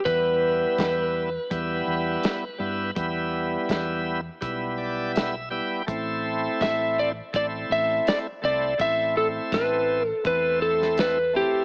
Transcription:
0.05 fingered electric bass E2, tonewheel organ G3 B3 E4, electric slide guitar B4, kick, closed hi-hat
0.78 fingered electric bass E2, kick, snare, closed hi-hat
1.50 fingered electric bass E2, tonewheel organ G3 B3 E4, kick, closed hi-hat
1.87 fingered electric bass E2
2.23 snare, closed hi-hat
2.58 fingered electric bass G2, tonewheel organ G3 B3 E4
2.95 fingered electric bass E2, tonewheel organ G3 B3 E4, kick, closed hi-hat
3.69 fingered electric bass E2, kick, snare, closed hi-hat
4.41 fingered electric bass B1, tonewheel organ G3 B3 E4, kick, closed hi-hat
4.78 tonewheel organ D5
5.15 tonewheel organ E5, snare, closed hi-hat
5.50 tonewheel organ G3 B3 E4 G5
5.87 fingered electric bass A1, tonewheel organ A3 C4 E4, kick, closed hi-hat
6.61 fingered electric bass A1, electric slide guitar E5, kick, snare, closed hi-hat
6.99 electric slide guitar D5
7.33 fingered electric bass A1, tonewheel organ A3 C4 E4, electric slide guitar D5, kick, closed hi-hat
7.70 fingered electric bass A1, electric slide guitar E5
8.07 electric slide guitar D5, snare, closed hi-hat
8.42 fingered electric bass C2, tonewheel organ A3 C4 E4, electric slide guitar D5
8.78 fingered electric bass A1, tonewheel organ A3 C4 E4, electric slide guitar E5, kick, closed hi-hat
9.17 electric slide guitar A4
9.52 fingered electric bass A1, electric slide guitar B4, kick, snare, closed hi-hat
10.09 electric slide guitar A4
10.24 fingered electric bass E2, tonewheel organ A3 C4 E4, electric slide guitar B4, kick, closed hi-hat
10.62 electric slide guitar A4
10.82 snare
10.97 electric slide guitar B4, snare, closed hi-hat
11.33 tonewheel organ A3 C4 E4, electric slide guitar G4

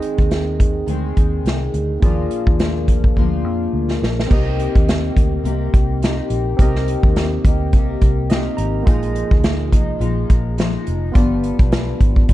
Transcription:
Already playing: steel-string acoustic guitar D#3 G#3 C4 G#4, tine electric piano C4 D#4 G#4 D#5
0.02 closed hi-hat
0.18 fingered electric bass D#2, kick, closed hi-hat
0.31 snare, closed hi-hat
0.60 kick, closed hi-hat
0.86 fingered electric bass D2, steel-string acoustic guitar D#3 G#3 C4 G#4, closed hi-hat
1.17 fingered electric bass D#2, kick, closed hi-hat
1.44 fingered electric bass C2, snare, closed hi-hat
1.74 fingered electric bass D2, closed hi-hat
2.00 fingered electric bass D#2, steel-string acoustic guitar A#2, tine electric piano A#3 F4 G#4, kick, closed hi-hat
2.04 steel-string acoustic guitar F3 A#3 D4 F4, tine electric piano D5
2.31 closed hi-hat
2.47 fingered electric bass D#2, kick
2.59 snare, closed hi-hat
2.88 kick, closed hi-hat
3.04 kick
3.16 fingered electric bass D2, steel-string acoustic guitar A#2 F3 A#3 D4 F4, kick
3.44 fingered electric bass F2
3.73 fingered electric bass D2
3.90 snare
4.02 fingered electric bass A#1, snare
4.20 snare
4.27 fingered electric bass C2, steel-string acoustic guitar C3, tine electric piano C4 G4 A#4, kick, crash
4.32 steel-string acoustic guitar A#3 D#4 G4, tine electric piano D#5
4.60 closed hi-hat
4.75 fingered electric bass D#2, kick, closed hi-hat
4.89 snare, closed hi-hat
5.16 fingered electric bass D2, kick, closed hi-hat
5.44 fingered electric bass C2, steel-string acoustic guitar C3 A#3 D#4 G4, closed hi-hat
5.74 fingered electric bass C2, kick, closed hi-hat
6.02 steel-string acoustic guitar C3 A#3 D#4 G4, snare, closed hi-hat
6.30 fingered electric bass A#1, closed hi-hat
6.57 fingered electric bass C2, steel-string acoustic guitar C3, tine electric piano C4 G4 A#4, kick, closed hi-hat
6.61 steel-string acoustic guitar A#3 D#4 G4, tine electric piano D#5
6.76 snare
6.88 closed hi-hat
7.03 fingered electric bass D#2, kick
7.16 snare, closed hi-hat
7.45 fingered electric bass D2, steel-string acoustic guitar A#3 D#4 G4, kick, closed hi-hat
7.73 fingered electric bass C2, steel-string acoustic guitar C3 A#3 D#4 G4, kick, closed hi-hat
8.01 fingered electric bass C2, kick, closed hi-hat
8.30 steel-string acoustic guitar C3 A#3 D#4 G4, tine electric piano D#5, snare, closed hi-hat
8.57 fingered electric bass G#1, tine electric piano A#5, closed hi-hat
8.83 fingered electric bass A#1, tine electric piano A#3 F4 G#4, kick
8.87 steel-string acoustic guitar A#2 F3 G#3 D#4, tine electric piano D#5, closed hi-hat
9.03 closed hi-hat
9.15 closed hi-hat
9.31 fingered electric bass D2, kick
9.44 snare, closed hi-hat
9.72 fingered electric bass C2, steel-string acoustic guitar F3 G#3 D#4, kick, closed hi-hat
9.99 fingered electric bass A#1, steel-string acoustic guitar A#2 F3 G#3 D#4, closed hi-hat
10.30 fingered electric bass A#1, kick, closed hi-hat
10.57 steel-string acoustic guitar A#2 F3 G#3 D#4, snare, closed hi-hat
10.87 fingered electric bass F1, closed hi-hat
11.12 fingered electric bass G1, steel-string acoustic guitar G2 F3, tine electric piano B3 F4 G4, kick, closed hi-hat
11.16 steel-string acoustic guitar B3 D4, tine electric piano D5
11.44 closed hi-hat
11.59 fingered electric bass B1, kick, closed hi-hat
11.72 snare, closed hi-hat
12.00 fingered electric bass G#1, kick, closed hi-hat
12.16 kick
12.28 fingered electric bass G1, steel-string acoustic guitar G2 F3 B3 D4, kick, closed hi-hat

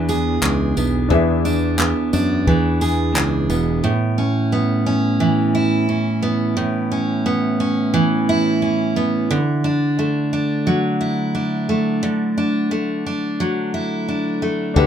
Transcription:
Already playing: fingered electric bass E2, steel-string acoustic guitar E2 E3 B3 D4, grand piano D4 E4 G#4 B4 E5
0.09 steel-string acoustic guitar G#4, tambourine
0.42 fingered electric bass C#2, steel-string acoustic guitar D4, clap
0.77 fingered electric bass B1, steel-string acoustic guitar B3, tambourine
1.09 steel-string acoustic guitar E2, fingered electric bass E2, grand piano D4 E4 G#4 B4, kick
1.13 grand piano E5
1.45 steel-string acoustic guitar D4, tambourine
1.79 steel-string acoustic guitar B3, clap
2.13 fingered electric bass F#2, steel-string acoustic guitar D4, tambourine
2.47 fingered electric bass E2, steel-string acoustic guitar E3, kick
2.81 steel-string acoustic guitar G#4, tambourine
3.16 fingered electric bass C#2, steel-string acoustic guitar D4, clap
3.49 fingered electric bass E1, steel-string acoustic guitar B3, tambourine
3.84 steel-string acoustic guitar A2
4.18 steel-string acoustic guitar C#4
4.52 steel-string acoustic guitar B3
4.86 steel-string acoustic guitar C#4
5.20 steel-string acoustic guitar E3
5.55 steel-string acoustic guitar E4
5.89 steel-string acoustic guitar C#4
6.22 steel-string acoustic guitar B3
6.57 steel-string acoustic guitar A2
6.92 steel-string acoustic guitar C#4
7.26 steel-string acoustic guitar B3
7.60 steel-string acoustic guitar C#4
7.94 steel-string acoustic guitar E3
8.29 steel-string acoustic guitar E4
8.62 steel-string acoustic guitar C#4
8.96 steel-string acoustic guitar B3
9.31 steel-string acoustic guitar D3
9.64 steel-string acoustic guitar D4
9.99 steel-string acoustic guitar A3
10.33 steel-string acoustic guitar D4
10.67 steel-string acoustic guitar F#3
11.01 steel-string acoustic guitar E4
11.35 steel-string acoustic guitar D4
11.69 steel-string acoustic guitar A3
12.03 steel-string acoustic guitar D3
12.38 steel-string acoustic guitar D4
12.71 steel-string acoustic guitar A3
13.06 steel-string acoustic guitar D4
13.40 steel-string acoustic guitar F#3
13.74 steel-string acoustic guitar E4
14.08 steel-string acoustic guitar D4
14.42 steel-string acoustic guitar A3
14.74 fingered electric bass D2, steel-string acoustic guitar D3, grand piano D4 G4 B4, kick

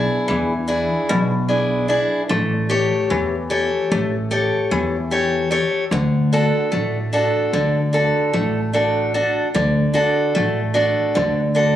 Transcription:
Already playing: steel-string acoustic guitar B2 D4 E4 G#4
0.28 upright bass E2, steel-string acoustic guitar E3
0.68 steel-string acoustic guitar D4 E4 G#4
1.09 upright bass B1, steel-string acoustic guitar B2
1.48 steel-string acoustic guitar D4 E4 G#4
1.88 steel-string acoustic guitar D4 E4 G#4
2.29 upright bass A1, steel-string acoustic guitar A3
2.70 steel-string acoustic guitar G4 A4 C#5
3.10 upright bass E2, steel-string acoustic guitar E3
3.50 steel-string acoustic guitar G4 A4 C#5
3.92 upright bass A1, steel-string acoustic guitar A3
4.31 steel-string acoustic guitar G4 A4 C#5
4.71 upright bass E2, steel-string acoustic guitar E3
5.11 steel-string acoustic guitar G4 A4 C#5
5.51 steel-string acoustic guitar G4 A4 C#5
5.91 upright bass D2, steel-string acoustic guitar D3
6.33 steel-string acoustic guitar D4 F#4 A4
6.72 upright bass A1, steel-string acoustic guitar A3
7.13 steel-string acoustic guitar D4 F#4 A4
7.53 upright bass D2, steel-string acoustic guitar D3
7.93 steel-string acoustic guitar D4 F#4 A4
8.33 upright bass A1, steel-string acoustic guitar A3
8.73 steel-string acoustic guitar D4 F#4 A4
9.14 steel-string acoustic guitar D4 F#4 A4
9.55 upright bass D2, steel-string acoustic guitar D3
9.94 steel-string acoustic guitar D4 F#4 A4
10.35 upright bass A1, steel-string acoustic guitar A3
10.74 steel-string acoustic guitar D4 F#4 A4
11.15 upright bass D2, steel-string acoustic guitar D3
11.55 steel-string acoustic guitar D4 F#4 A4

